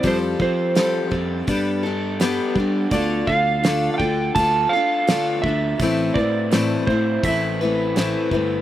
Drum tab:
HH |o-o-o-o-|o-o-o-o-|o-o-o-o-|
SD |--o---o-|--o---o-|--o---o-|
BD |oo-oo--o|oo-oo--o|oo-oo--o|